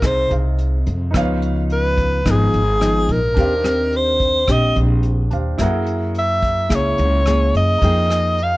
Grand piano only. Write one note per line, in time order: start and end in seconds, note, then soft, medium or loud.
0.00 0.25 D#4 medium
0.00 0.26 G#4 medium
0.00 0.27 C5 medium
0.00 0.29 F5 medium
0.29 1.09 D#4 soft
0.29 1.14 G#4 soft
0.29 1.14 C5 soft
0.29 1.15 F5 soft
1.11 3.31 D#4 medium
1.11 3.32 B4 medium
1.11 3.33 C#5 medium
1.17 3.35 F5 medium
3.34 5.27 D4 medium
3.34 5.28 G4 soft
3.34 5.29 C5 medium
3.40 5.30 F5 medium
5.30 5.59 D4 soft
5.30 5.60 G4 soft
5.30 5.60 C5 soft
5.30 5.61 F5 soft
5.58 7.78 E4 medium
5.58 7.79 G#4 medium
5.58 7.80 A#4 medium
5.63 7.81 F#5 medium
7.78 8.57 D#4 soft
7.78 8.57 G#4 medium
7.83 8.57 A#4 medium
7.83 8.57 G5 medium